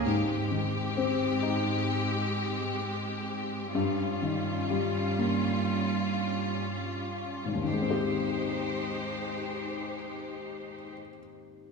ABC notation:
X:1
M:4/4
L:1/8
Q:1/4=61
K:Ab
V:1 name="String section"
[A,,A,CG]8 | [G,,G,DF]8 | [A,EGc]8 |]
V:2 name="Felt piano" clef=bass
A,, E, C E4 z | G,, E, G, B,4 z | [A,,,E,,E,A,CG]8 |]